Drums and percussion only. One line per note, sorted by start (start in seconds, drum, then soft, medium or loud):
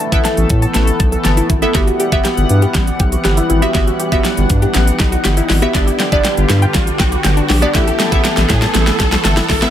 0.00 closed hi-hat medium
0.12 kick medium
0.12 closed hi-hat medium
0.25 snare medium
0.25 closed hi-hat medium
0.37 closed hi-hat medium
0.49 kick medium
0.49 closed hi-hat medium
0.62 closed hi-hat soft
0.74 snare medium
0.74 closed hi-hat medium
0.87 closed hi-hat medium
1.00 kick medium
1.00 closed hi-hat medium
1.12 closed hi-hat medium
1.25 snare medium
1.25 closed hi-hat medium
1.37 closed hi-hat medium
1.50 kick medium
1.50 closed hi-hat medium
1.62 closed hi-hat medium
1.75 kick loud
1.75 snare medium
1.75 closed hi-hat medium
1.87 closed hi-hat medium
2.00 closed hi-hat medium
2.12 kick medium
2.12 closed hi-hat medium
2.25 snare medium
2.25 closed hi-hat medium
2.37 closed hi-hat medium
2.49 closed hi-hat medium
2.62 closed hi-hat soft
2.74 kick loud
2.74 snare medium
2.74 closed hi-hat medium
2.87 closed hi-hat medium
3.00 kick medium
3.00 closed hi-hat medium
3.12 closed hi-hat medium
3.25 snare medium
3.25 closed hi-hat medium
3.37 closed hi-hat medium
3.50 closed hi-hat medium
3.62 closed hi-hat soft
3.75 kick loud
3.75 snare medium
3.75 closed hi-hat medium
3.87 closed hi-hat medium
4.00 closed hi-hat medium
4.12 kick loud
4.12 closed hi-hat medium
4.25 snare medium
4.25 closed hi-hat medium
4.37 closed hi-hat medium
4.50 kick medium
4.50 closed hi-hat medium
4.62 closed hi-hat medium
4.74 snare medium
4.74 closed hi-hat loud
4.87 closed hi-hat medium
5.00 kick loud
5.00 snare medium
5.00 closed hi-hat medium
5.12 closed hi-hat medium
5.25 snare medium
5.25 closed hi-hat medium
5.37 closed hi-hat medium
5.50 snare medium
5.50 open hi-hat medium
5.62 closed hi-hat medium
5.75 kick loud
5.75 snare medium
5.75 closed hi-hat medium
5.88 closed hi-hat medium
6.00 snare medium
6.00 closed hi-hat medium
6.12 kick loud
6.12 closed hi-hat medium
6.25 snare medium
6.25 closed hi-hat loud
6.37 closed hi-hat medium
6.49 snare medium
6.49 closed hi-hat medium
6.62 closed hi-hat soft
6.74 kick medium
6.74 snare medium
6.74 closed hi-hat loud
6.87 closed hi-hat medium
6.99 kick loud
6.99 snare loud
6.99 closed hi-hat medium
7.12 closed hi-hat medium
7.24 snare loud
7.24 closed hi-hat medium
7.37 closed hi-hat medium
7.50 snare loud
7.50 open hi-hat medium
7.62 closed hi-hat medium
7.75 kick loud
7.75 snare loud
7.75 closed hi-hat medium
7.87 closed hi-hat medium
8.00 snare loud
8.00 closed hi-hat medium
8.12 kick loud
8.12 closed hi-hat medium
8.25 snare loud
8.25 closed hi-hat medium
8.37 snare loud
8.37 closed hi-hat medium
8.49 kick loud
8.49 snare loud
8.49 closed hi-hat medium
8.62 snare loud
8.62 closed hi-hat medium
8.74 snare loud
8.74 closed hi-hat loud
8.87 snare loud
8.87 closed hi-hat medium
9.00 kick loud
9.00 snare loud
9.00 closed hi-hat medium
9.12 snare loud
9.12 closed hi-hat medium
9.25 snare loud
9.25 closed hi-hat medium
9.37 snare loud
9.37 closed hi-hat medium
9.50 kick medium
9.50 snare loud
9.50 open hi-hat medium
9.62 snare loud
9.62 closed hi-hat medium